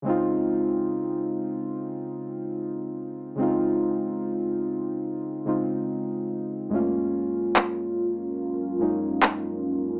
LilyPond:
<<
  \new Staff \with { instrumentName = "Ambient pad" } { \time 4/4 \key des \major \tempo 4 = 72 r1 | r1 | <ges des' f' bes'>1 | }
  \new Staff \with { instrumentName = "Synth keys" } { \time 4/4 \key des \major <des aes c' ees' f'>1 | <des aes c' ees' f'>2~ <des aes c' ees' f'>8 <des aes c' ees' f'>4. | <ges, aes a bes des' f'>2~ <ges, aes a bes des' f'>8 <ges, aes bes des' ees'>4. | }
  \new DrumStaff \with { instrumentName = "Drums" } \drummode { \time 4/4 r4 r4 r4 r4 | r4 r4 r4 r4 | r4 hc4 r4 hc4 | }
>>